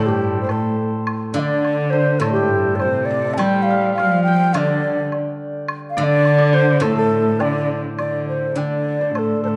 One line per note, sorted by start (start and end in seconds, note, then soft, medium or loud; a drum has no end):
0.00 1.36 A2 medium
0.00 0.49 A4 medium
0.00 0.44 C5 medium
0.00 1.35 D5 medium
0.06 0.52 G2 medium
0.06 0.41 G4 medium
0.06 2.36 G4 medium
0.42 0.47 C5 medium
0.42 1.92 C5 soft
0.47 0.93 A2 medium
0.47 2.22 A4 medium
0.47 0.53 C5 medium
0.47 high woodblock medium
0.52 0.92 A4 medium
1.07 high woodblock medium
1.34 3.09 D3 medium
1.34 2.25 D3 loud
1.34 3.10 D5 medium
1.34 1.40 F5 medium
1.39 1.92 D5 medium
1.65 high woodblock soft
1.90 2.21 C5 medium
1.90 2.81 C5 medium
2.19 3.96 A2 medium
2.19 2.38 A2 medium
2.19 2.32 A4 medium
2.19 5.15 A4 medium
2.19 high woodblock medium
2.32 2.77 G4 medium
2.36 2.85 G2 medium
2.36 5.50 G4 medium
2.76 2.81 D5 medium
2.76 high woodblock soft
2.80 3.41 C3 medium
2.80 3.07 C5 medium
2.80 5.46 C5 medium
3.05 3.35 D5 medium
3.11 4.55 D5 medium
3.34 5.12 G3 medium
3.34 3.64 G5 loud
3.34 3.38 A5 medium
3.39 3.98 G3 medium
3.39 4.27 G5 medium
3.39 high woodblock medium
3.63 3.93 F5 medium
3.70 3.99 F5 medium
3.94 4.56 F3 medium
3.94 4.22 F5 loud
3.98 6.22 F5 medium
3.98 high woodblock soft
4.23 4.55 G5 loud
4.28 6.35 G5 medium
4.54 5.12 D3 medium
4.54 5.97 D3 medium
4.54 5.96 D5 medium
4.54 4.59 F5 medium
4.54 high woodblock medium
4.58 5.12 D5 medium
5.12 high woodblock soft
5.68 high woodblock medium
5.90 5.99 F5 medium
5.97 7.69 D3 medium
5.97 6.85 D3 loud
5.97 6.38 D5 loud
5.97 6.05 F5 loud
6.04 6.56 D5 loud
6.25 high woodblock soft
6.38 7.41 D5 loud
6.53 9.00 C5 medium
6.53 6.84 C5 loud
6.80 8.56 A2 medium
6.80 6.97 A2 medium
6.80 6.97 A4 loud
6.80 6.95 A4 medium
6.80 high woodblock medium
6.96 7.43 A2 medium
6.96 9.15 A4 medium
6.96 7.42 A4 medium
7.40 7.85 D3 medium
7.40 7.84 D5 medium
7.40 7.99 D5 medium
7.40 high woodblock soft
7.40 low woodblock soft
7.98 8.53 D3 medium
7.98 8.26 D5 medium
7.98 8.56 D5 medium
7.98 high woodblock medium
8.29 8.58 C5 medium
8.56 9.56 D3 medium
8.56 9.14 D3 medium
8.56 9.56 D5 medium
8.56 9.17 D5 medium
8.56 low woodblock soft
9.01 9.56 C5 medium
9.13 9.41 A2 medium
9.13 9.43 A4 medium
9.13 9.20 C5 medium
9.13 high woodblock medium
9.19 9.43 A4 medium
9.41 9.56 A2 medium
9.41 9.56 A4 medium
9.41 9.49 C5 medium
9.48 9.56 A4 medium